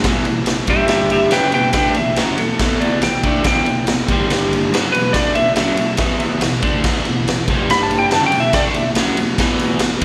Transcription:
0.04 E2 B2 E3, kick, snare, ride
0.25 E2 B2, ride
0.46 E2 B2, snare, ride
0.67 G2 D3 G3 G4 E5, kick, ride
0.88 G4 E5, snare, ride
1.10 G4 E5, ride
1.31 F#2 C#3 F#3 B4 G5, snare, ride
1.52 E2 B2 B4 G5, ride
1.73 D3 A3 D4 B4 G5, kick, snare, ride
1.94 E2 B2 E5, ride
2.16 F#2 C#3 F#3, snare, ride
2.38 E2 B2 A4, ride
2.59 E2 B2 E3, kick, snare, ride
2.80 D5, ride
3.02 E2 B2 G5, snare, ride
3.24 D3 A3 D4, kick, ride
3.44 E2 B2 E3 G5, kick, snare, ride
3.66 E2 B2, ride
3.87 E2 B2, snare, ride
4.08 G2 D3 G3, kick, ride
4.30 snare, ride
4.53 ride
4.72 F#2 C#3 F#3, snare, ride
4.92 E2 B2 B4, ride
5.13 D3 A3 D4 D5, kick, snare, ride
5.35 E2 B2 E5, ride
5.56 F#2 C#3 F#3 E5, snare, ride
5.77 E2 B2, ride
5.97 E2 B2 E3, kick, snare, ride
6.20 ride
6.41 E2 B2, snare, ride
6.62 D3 A3 D4, kick, ride
6.84 E2 B2 E3, kick, snare, crash
7.05 E2 B2, ride
7.28 E2 B2, snare, ride
7.48 G2 D3 G3, kick, ride
7.70 B5, snare, ride
7.83 A5
7.91 ride
7.99 G5
8.11 F#2 C#3 F#3 A5, snare, ride
8.26 G5
8.32 E2 B2, ride
8.40 E5
8.53 D3 A3 D4 D5, kick, snare, ride
8.68 E5
8.74 E2 B2, ride
8.95 F#2 C#3 F#3, snare, ride
9.17 E2 B2, ride
9.38 E2 B2 E3, kick, snare, ride
9.59 ride
9.79 E2 B2, snare, ride
10.01 D3, ride

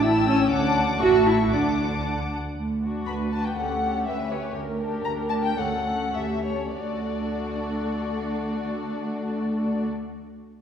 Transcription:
Already playing: A1 A2
0.02 E4 G5 A5 E6
0.29 C#4
0.50 D2 D3 F#5 A5 D6
1.00 A1 A2 F#4 E5 A5 C#6
1.26 E4
1.50 D2 D3 D4 F#5 A5 D6
2.56 D2
2.82 D4 F#4
3.08 D2 B4 B5
3.32 D4 F#4 A5
3.45 G5
3.58 D2 C#4 G4 A4 F#5
3.83 C#4 G4
4.07 D2 B4 E5
4.30 C#4 G4 C#5
4.55 D2 A#4
4.78 D4 G4
5.04 D2 A#5
5.29 D4 G4 A5
5.43 G5
5.57 D2 C#4 A4 F#5
5.86 C#4 A4
6.14 D2 G4 E5
6.44 C#4 A4 C#5
6.75 D2 A3 D4 F#4 A4 D5

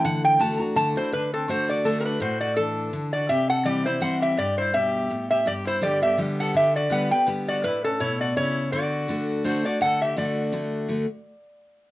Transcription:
0.05 D3 F#5
0.25 G5
0.39 D3 A3 D4 F#4 A5
0.60 D4 F#4 A#5
0.76 D3 A3 D4 F#4 A5
0.96 D4 E4 F#4 C5
1.12 D3 D4 B4
1.33 C4 A4
1.48 D3 A3 D4 F#4 C5
1.69 F#4 D5
1.84 D3 A3 D4 F#4 A4
2.00 C4 A#4
2.04 D4 B4
2.20 A2 F#4 C5
2.41 F#4 D5
2.56 E3 D4 A4
2.93 D3
3.13 F#4 D5
3.29 C3 G4 E5
3.49 A4 F#5
3.65 E3 G3 C4 E4 G4 D5
3.85 C4 E4 C5
4.00 E3 G3 C4 E4 C5 F#5
4.20 G4 E5
4.37 G2 G4 D5
4.58 E4 C5
4.74 B2 G4 E5
5.11 A2
5.30 G4 E5
5.46 G2 G4 D5
5.67 E4 C5
5.82 D3 G3 B3 G4 D5
6.02 B3 G4 E5
6.18 D3 G3 B3 G4
6.39 A4 F#5
6.54 D3 G4 E5
6.75 F#4 D5
6.90 D3 G3 B3 G4 B4 F#5
7.10 B3 G4 B4 G5
7.27 D3 G3 B3 G4
7.48 F#4 D5
7.64 A2 E4 B4
7.84 C#4 A4
8.00 B2 E4 C#5
8.20 F#4 D5
8.37 C#3 E4 C#5
8.72 D3 F#4 D5
9.08 D3 A3 D4 F#4
9.44 D3 A3 D4 F#4 C5
9.63 D4 F#4 D5
9.81 D3 A4 F#5
10.01 G4 E5
10.17 D3 A3 D4 F#4 D5
10.52 D3 A3 D4 F#4
10.88 D3 A3 D4 F#4

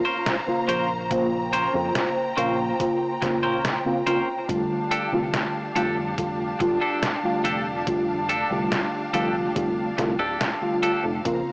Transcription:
Already playing: C5 F5 A#5
0.05 C#4 A#4 C5
0.26 snare, closed hi-hat
0.47 C#3 A#3 F4 C5
0.68 A#1 C#4 A#4 C5, closed hi-hat
1.10 C#3 A#3 F4 C5 G5, kick, closed hi-hat
1.53 C#4 A#4 C5, closed hi-hat
1.74 F2 C#3 A#3 F4 C5
1.95 snare, closed hi-hat
2.37 A#1 C#3 A#3 C#4 F4 A#4 C5, closed hi-hat
2.79 C#3 A#3 F4 C5, kick, closed hi-hat
3.21 F1 C#3 A#3 F4 C5, muted clean electric guitar stroke, kick, snare, closed hi-hat
3.43 A#1 C#4 A#4 C5
3.65 snare, closed hi-hat
3.85 C#3 A#3 C4 F4
4.06 C#3 A#3 C4 C#4 F4 A#4 C5, closed hi-hat
4.48 F1 D3 G3 A3 D4 F4 G4 F5 A5, kick, closed hi-hat
4.91 D4 G4 A4, closed hi-hat
5.12 C2 D3 G3 A3 F4
5.34 snare, closed hi-hat
5.75 F1 D3 G3 A3 D4 F4 G4 A4, closed hi-hat
6.17 D3 G3 A3 F4, kick, closed hi-hat
6.59 D1 D3 G3 A3 F4, muted clean electric guitar stroke, kick, closed hi-hat
6.81 D4 G4 A4
7.03 snare, closed hi-hat
7.23 D3 G3 A3 F4
7.44 F1 D4 G4 A4, closed hi-hat
7.86 D3 G3 A3 F4, kick, closed hi-hat
8.29 D4 G4 A4, closed hi-hat
8.50 C2 D3 G3 A3 F4
8.72 snare, closed hi-hat
9.13 F1 D3 G3 A3 D4 F4 G4 A4, closed hi-hat
9.55 F1 D3 G3 A3 F4, kick, closed hi-hat
9.98 C2 D3 G3 A3 F4, muted clean electric guitar stroke, kick, snare, closed hi-hat
10.19 D1 D4 G4 A4
10.41 snare, closed hi-hat
10.61 D3 G3 A3 F4
10.83 D4 G4 A4, closed hi-hat
11.04 F1
11.24 A#1 C#3 A#3 C4 F4 C5 A#5, kick, closed hi-hat

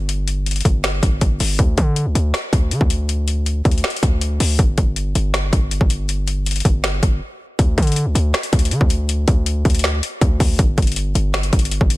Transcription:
Already playing: G1
0.09 closed hi-hat
0.28 closed hi-hat
0.46 closed hi-hat
0.51 closed hi-hat
0.56 closed hi-hat
0.61 closed hi-hat
0.65 G1, kick, closed hi-hat
0.84 finger snap, snare, closed hi-hat
1.03 G1, kick, closed hi-hat
1.21 G1, kick, closed hi-hat
1.40 G1, open hi-hat
1.59 D2, kick, closed hi-hat
1.78 D3, kick, closed hi-hat
1.96 closed hi-hat
2.06 C#2
2.15 D2, closed hi-hat
2.34 finger snap, snare, closed hi-hat
2.53 D2, kick, closed hi-hat
2.71 D3, closed hi-hat
2.81 D2, kick
2.90 closed hi-hat
3.09 closed hi-hat
3.28 closed hi-hat
3.46 closed hi-hat
3.65 D2, kick, closed hi-hat
3.71 closed hi-hat
3.78 closed hi-hat
3.84 finger snap, snare, closed hi-hat
3.90 closed hi-hat
3.96 closed hi-hat
4.03 D2, kick, closed hi-hat
4.21 closed hi-hat
4.40 D2, open hi-hat
4.59 G1, kick, closed hi-hat
4.78 G1, kick, closed hi-hat
4.96 closed hi-hat
5.15 G1, closed hi-hat
5.34 finger snap, snare, closed hi-hat
5.53 G1, kick, closed hi-hat
5.71 closed hi-hat
5.81 G1, kick
5.90 closed hi-hat
6.09 closed hi-hat
6.28 closed hi-hat
6.46 closed hi-hat
6.51 closed hi-hat
6.56 closed hi-hat
6.60 closed hi-hat
6.65 G1, kick, closed hi-hat
6.84 finger snap, snare, closed hi-hat
7.03 G1, kick, closed hi-hat
7.59 D2, kick, closed hi-hat
7.78 D3, kick, closed hi-hat
7.82 closed hi-hat
7.87 closed hi-hat
7.92 closed hi-hat
7.96 closed hi-hat
8.06 C#2
8.15 D2, closed hi-hat
8.34 finger snap, snare, closed hi-hat
8.43 closed hi-hat
8.53 D2, kick, closed hi-hat
8.59 closed hi-hat
8.65 closed hi-hat
8.71 D3, closed hi-hat
8.81 D2, kick
8.90 closed hi-hat
9.09 closed hi-hat
9.28 D2, kick, closed hi-hat
9.46 closed hi-hat
9.65 D2, kick, closed hi-hat
9.70 closed hi-hat
9.75 closed hi-hat
9.79 closed hi-hat
9.84 finger snap, snare
10.03 closed hi-hat
10.21 D2, kick, closed hi-hat
10.40 D2, kick, open hi-hat
10.59 G1, kick, closed hi-hat
10.78 G1, kick, closed hi-hat
10.82 closed hi-hat
10.87 closed hi-hat
10.92 closed hi-hat
10.96 closed hi-hat
11.15 G1, closed hi-hat
11.34 finger snap, snare, closed hi-hat
11.43 closed hi-hat
11.53 G1, kick, closed hi-hat
11.59 closed hi-hat
11.65 closed hi-hat
11.71 closed hi-hat
11.81 G1, kick
11.90 closed hi-hat

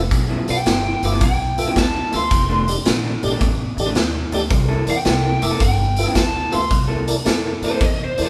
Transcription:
0.03 muted clean electric guitar stroke
0.11 B1, kick, closed hi-hat
0.30 G2 F3 B3 E4
0.48 B1 F4 A4 B4 D5 G5, closed hi-hat
0.57 muted clean electric guitar stroke
0.66 G1 G2 F3 B3 E4, snare, closed hi-hat
1.03 G1 F4 A4 B4 E5 D6, closed hi-hat
1.12 G2 F3 B3 E4
1.21 B1 G5, kick, closed hi-hat
1.58 F4 A4 B4 E5, closed hi-hat
1.66 G2 F3 B3 E4
1.76 D2 A5, kick, snare, closed hi-hat
1.95 muted clean electric guitar stroke
2.12 D2 G2 F3 B3 E4 F4 A4 B4 E5, closed hi-hat
2.16 C6
2.22 muted clean electric guitar stroke
2.31 F1, kick, closed hi-hat
2.49 F2 D#3 A3 D4
2.68 D#4 G4 A4 D5, closed hi-hat
2.77 muted clean electric guitar stroke
2.85 A#1 F2 D#3 A3 D4, snare, closed hi-hat
3.23 A#1 D#4 G4 A4 D5, closed hi-hat
3.31 F2 D#3 A3 D4
3.41 A1, kick, closed hi-hat
3.77 A1 D#4 G4 A4 D5, closed hi-hat
3.86 F2 D#3 A3 D4
3.95 D#2, snare, closed hi-hat
4.14 muted clean electric guitar stroke
4.32 D2 F2 D#3 A3 D4 D#4 G4 A4 D5, closed hi-hat
4.41 muted clean electric guitar stroke
4.50 C2, kick, closed hi-hat
4.69 C3 A#3 E4 A4
4.87 E2 E4 A4 A#4 D5 G5, closed hi-hat
4.96 muted clean electric guitar stroke
5.05 C2 C3 A#3 E4 A4, snare, closed hi-hat
5.42 F1 E4 A4 A#4 E5 D6, closed hi-hat
5.51 C3 A#3 E4 A4
5.60 G1 G5, kick, closed hi-hat
5.96 F4 A4 B4 E5, closed hi-hat
6.06 G2 F3 B3 E4
6.15 D2 A5, kick, snare, closed hi-hat
6.33 muted clean electric guitar stroke
6.51 D2 G2 F3 B3 E4 F4 A4 B4 E5 C6, closed hi-hat
6.60 muted clean electric guitar stroke
6.71 C2, kick, closed hi-hat
6.88 C3 A#3 E4 A4
7.08 E4 A4 A#4 D5, closed hi-hat
7.16 muted clean electric guitar stroke
7.25 F2 C3 A#3 E4 A4, snare, closed hi-hat
7.62 F2 E4 A4 A#4 C5 D5, closed hi-hat
7.71 C3 A#3 E4 A4
7.80 E2 D#5, kick, closed hi-hat
8.04 C5
8.18 E2 E4 A4 A#4 D5, closed hi-hat
8.23 E4 A4 C5

